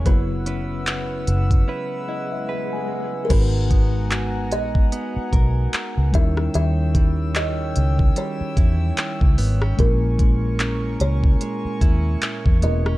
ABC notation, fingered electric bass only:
X:1
M:4/4
L:1/16
Q:"Swing 16ths" 1/4=74
K:G#m
V:1 name="Fingered electric bass" clef=bass
F,,,6 F,,,2 z8 | G,,,6 A,,,2 z2 B,,,2 z C,, D,,2 | D,,6 C,,2 z2 E,,2 z C,, G,,,2 | A,,,6 C,,2 z2 D,,2 z E,, E,,,2 |]